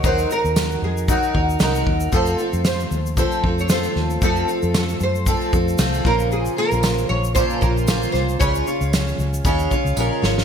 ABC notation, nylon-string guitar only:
X:1
M:4/4
L:1/16
Q:"Swing 16ths" 1/4=115
K:Fphr
V:1 name="Nylon-string guitar"
c2 B4 A2 G4 B3 z | c4 c4 c3 d c4 | =A4 A2 c4 z4 B2 | A2 B4 d2 c2 B4 c2 |
d12 B4 |]